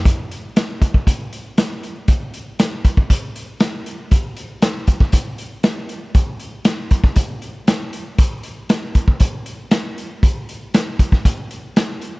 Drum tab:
HH |x-x-x-x-x-x-x-x-|x-x-x-x-x-x-x-x-|x-x-x-x-x-x-x-x-|x-x-x-x-x-x-x-x-|
SD |----o-------o---|----o-------o---|----o--o----o---|----o--o----o---|
BD |o-----ooo-------|o-----ooo-------|o-----ooo-------|o-----ooo-------|

HH |x-x-x-x-x-x-x-x-|x-x-x-x-x-x-x-x-|
SD |----o-------o---|----o--o----o---|
BD |o-----ooo-------|o-----ooo-------|